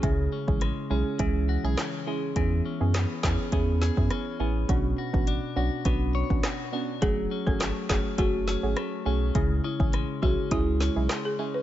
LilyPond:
<<
  \new Staff \with { instrumentName = "Marimba" } { \time 4/4 \key fis \minor \tempo 4 = 103 r1 | r1 | r1 | gis'16 r8 a'8 r16 gis'8 fis'8. r4 r16 |
r8 e'16 r8. fis'16 r16 e'8. r8 gis'16 r16 b'16 | }
  \new Staff \with { instrumentName = "Synth pluck" } { \time 4/4 \key fis \minor <gis cis' e' gis'>16 r8 <gis cis' e' gis'>16 r8 <gis cis' e' gis'>16 r16 <gis cis' e' gis'>8. <gis cis' e' gis'>16 r8 <gis cis' e' gis'>16 r16 | <b cis' e' gis'>16 r8 <b cis' e' gis'>16 r8 <b cis' e' gis'>16 r16 <b cis' e' gis'>8. <b cis' e' gis'>16 r8 <b cis' e' gis'>16 r16 | <b cis' d' fis'>16 r8 <b cis' d' fis'>16 r8 <b cis' d' fis'>16 r16 <b cis' d' fis'>8. <b cis' d' fis'>16 r8 <b cis' d' fis'>16 r16 | <a cis' fis' gis'>16 r8 <a cis' fis' gis'>16 r8 <a cis' fis' gis'>16 r16 <a cis' fis' gis'>8. <a cis' fis' gis'>16 r8 <a cis' fis' gis'>16 r16 |
<gis cis' e' gis'>16 r8 <gis cis' e' gis'>16 r8 <gis cis' e' gis'>16 r16 <gis cis' e' gis'>8. <gis cis' e' gis'>16 r8 <gis cis' e' gis'>16 r16 | }
  \new Staff \with { instrumentName = "Clean electric guitar" } { \time 4/4 \key fis \minor cis8 cis'8 gis8 cis'8 e8 fis'16 gis'16 cis'8 gis8 | e8 cis'8 b8 cis'8 b8 gis'8 cis'8 b8 | b,8 fis'8 d'8 fis'8 b8 cis''8 fis'8 d'8 | fis8 cis'8 a8 cis'8 a8 cis'8 a8 cis'8 |
cis8 cis'8 gis8 cis'8 gis8 cis'8 gis8 cis'8 | }
  \new Staff \with { instrumentName = "Sub bass" } { \clef bass \time 4/4 \key fis \minor cis,8 r16 a,,8 r16 b,,16 r16 cis,8. b,,16 r4 | e,8 r16 fis,8 r16 e,16 r16 e,8. fis,16 r8 a,,8 | b,,8 r16 a,,8 r16 b,,16 r16 b,,8. a,,16 r4 | fis,,8 r16 gis,,8 r16 fis,,16 r16 fis,,8. gis,,16 r8 b,,8 |
cis,8 r16 a,,8 r16 b,,16 r16 cis,8. b,,16 r4 | }
  \new DrumStaff \with { instrumentName = "Drums" } \drummode { \time 4/4 <hh bd>8. bd16 <hh ss>4 <hh bd>4 <hc hh ss sn>4 | <hh bd>4 <hc hh ss sn>8 <hc bd sn>8 <hh bd>8 sn16 bd16 <hh ss>4 | <hh bd>8. bd16 hh4 <hh bd>8. bd16 <hc hh ss sn>4 | <hh bd>8. bd16 <hc hh ss sn>8 <hc bd sn>8 <hh bd>8 sn8 <hh ss>4 |
<hh bd>8. bd16 <hh ss>8 bd8 <hh bd>8 sn8 <hc hh ss sn>4 | }
>>